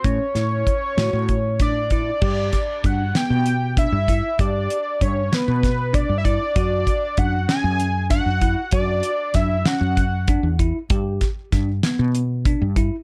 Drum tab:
CC |-------|x------|-------|-------|
HH |xxxxxxx|-xxxxxx|xxxxxxx|xxxxxxx|
SD |-o-o---|-o-o---|---oo--|---o-o-|
BD |o-o-ooo|ooo--oo|o-o-ooo|ooo--oo|

CC |-------|-------|
HH |xxxxxxx|xxxxxxx|
SD |--oo---|-ooo---|
BD |o-o-ooo|ooo--oo|